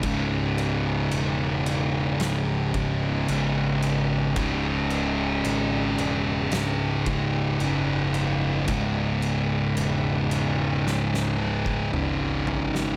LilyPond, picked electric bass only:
\new Staff \with { instrumentName = "Picked electric bass" } { \clef bass \time 4/4 \key cis \minor \tempo 4 = 56 cis,,4 e,,4 cis,,4 gis,,4 | cis,,4 gis,,8 e,,8 cis,,4 fis,,4 | cis,,4 e,,4 cis,,4 gis,,4 | }